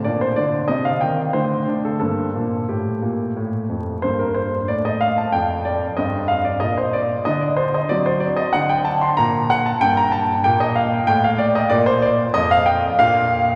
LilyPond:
<<
  \new Staff \with { instrumentName = "Grand piano" } { \time 3/4 \key g \minor \tempo 4 = 94 d''16 c''16 d''8 ees''16 f''16 g''8 c''8. a'16 | a'4 g'4 r4 | c''16 bes'16 c''8 d''16 ees''16 f''16 a''16 g''8 d''8 | ees''8 f''16 d''16 ees''16 c''16 d''8 ees''16 d''16 c''16 ees''16 |
d''16 c''16 d''16 ees''16 fis''16 g''16 a''16 c'''16 bes''8 fis''16 a''16 | g''16 bes''16 a''8 g''16 ees''16 f''8 g''16 f''16 d''16 ees''16 | d''16 c''16 d''8 ees''16 f''16 g''8 f''4 | }
  \new Staff \with { instrumentName = "Grand piano" } { \clef bass \time 3/4 \key g \minor << { d'4 c'4 a4 | bes2. | bes2. | c'2. |
c'2. | bes2. | bes2 d'4 | } \\ { bes,8 d8 c8 ees8 d8 d'8 | g,8 bes,8 a,8 bes,8 a,8 f,8 | g,4 a,4 f,4 | g,4 bes,4 d4 |
fis4 d4 bes,4 | g,4 bes,4 a,4 | bes,4 f,4 bes,4 | } >> }
>>